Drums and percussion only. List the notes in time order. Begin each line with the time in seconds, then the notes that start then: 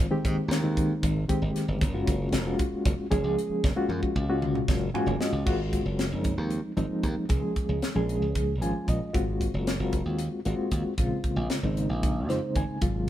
0.25 kick, closed hi-hat
0.51 snare, closed hi-hat
0.77 kick, closed hi-hat
1.03 kick, closed hi-hat
1.29 kick, closed hi-hat
1.56 snare, closed hi-hat
1.81 kick, closed hi-hat
2.07 kick, closed hi-hat
2.32 snare, closed hi-hat
2.59 kick, closed hi-hat
2.85 kick, closed hi-hat
3.12 kick, closed hi-hat
3.39 closed hi-hat
3.64 kick, snare
3.90 high tom
4.03 kick
4.16 kick
4.42 mid tom
4.55 mid tom
4.68 kick, snare
4.95 floor tom
5.08 floor tom
5.21 snare
5.47 kick, crash
5.73 kick, closed hi-hat
5.99 snare, closed hi-hat
6.24 kick, closed hi-hat
6.50 closed hi-hat
6.77 closed hi-hat
7.03 kick, closed hi-hat
7.29 kick, closed hi-hat
7.56 kick, closed hi-hat
7.82 snare, closed hi-hat
8.09 closed hi-hat
8.35 kick, closed hi-hat
8.62 closed hi-hat
8.88 kick, closed hi-hat
9.14 kick, closed hi-hat
9.41 kick, closed hi-hat
9.67 snare, closed hi-hat
9.93 kick, closed hi-hat
10.19 closed hi-hat
10.45 closed hi-hat
10.71 kick, closed hi-hat
10.98 kick, closed hi-hat
11.24 kick, closed hi-hat
11.50 snare, closed hi-hat
11.77 closed hi-hat
12.03 kick, closed hi-hat
12.30 snare, closed hi-hat
12.55 kick, closed hi-hat
12.81 kick, closed hi-hat